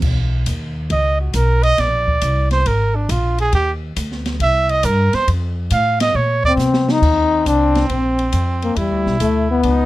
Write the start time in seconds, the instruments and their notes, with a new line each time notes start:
0.02 upright bass B1, kick, crash
0.46 upright bass D#2, kick, hi-hat pedal, ride
0.90 upright bass C#2, trumpet D#5, kick, ride
1.21 trumpet F#4
1.33 upright bass B1, trumpet A#4, kick, hi-hat pedal, ride
1.63 trumpet D#5, ride
1.78 upright bass A#1, trumpet D5, kick, snare, ride
2.08 kick
2.21 upright bass C2, kick, hi-hat pedal, ride
2.51 trumpet C5, snare, ride
2.66 upright bass G#1, trumpet A#4, kick, ride
2.95 trumpet D4
3.09 upright bass A#1, trumpet F4, kick, hi-hat pedal, ride
3.38 trumpet G#4, ride
3.53 upright bass D#2, trumpet G4, kick, ride
3.96 upright bass D2, kick, hi-hat pedal, ride
4.12 snare
4.26 snare, ride
4.40 upright bass C2, trumpet E5, kick, ride
4.69 trumpet D#5, ride
4.83 upright bass G2, trumpet A#4, kick, hi-hat pedal, ride
5.13 trumpet C5, muted upright bass stroke, snare, ride
5.28 upright bass F2, kick, ride
5.70 upright bass A2, trumpet F5, kick, hi-hat pedal, ride
6.00 trumpet D#5, snare, ride
6.15 upright bass A#2, trumpet C#5, kick
6.44 trombone C4, trumpet D5, kick
6.57 upright bass C3, snare, hi-hat pedal
6.74 snare
6.89 trombone D#4, snare
7.02 upright bass D#2, trumpet C4, kick, crash
7.46 upright bass C2, trombone D4, kick, hi-hat pedal, ride
7.75 snare, ride
7.89 upright bass A#1, trombone C4, kick, ride
8.19 ride
8.32 upright bass F2, kick, hi-hat pedal, ride
8.62 trombone A#3, ride
8.76 upright bass E2, trombone G3, trumpet E4, kick, ride
8.91 upright bass D2
9.06 upright bass B1, snare
9.20 upright bass D2, trombone A3, kick, hi-hat pedal, ride
9.51 trombone B3
9.63 upright bass C#2, trumpet D#4, kick, ride